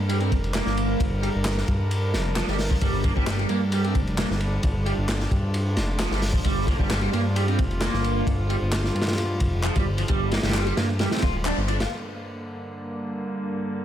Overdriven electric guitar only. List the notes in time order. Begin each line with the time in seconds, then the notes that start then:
0.09 G3
0.21 C4
0.54 A#3
1.22 G3
2.36 F3
2.48 G3
2.71 F3
2.81 G3
3.04 A#3
3.16 G3
3.27 G3
3.39 G3
3.49 A#3
3.72 G3
3.84 C4
4.17 A#3
4.86 G3
5.99 F3
6.11 G3
6.34 F3
6.45 G3
6.67 A#3
6.79 G3
6.90 G3
7.02 G3
7.13 A#3
7.36 G3
7.48 C4
7.81 A#3
8.49 G3
9.63 F3
9.75 G3
9.98 F3
10.08 G3
10.31 A#3
10.43 G3
10.54 G3
10.66 G3
10.77 A#3
11.00 G3
11.12 C4
11.22 F4
11.45 D4
11.68 D4
11.80 F4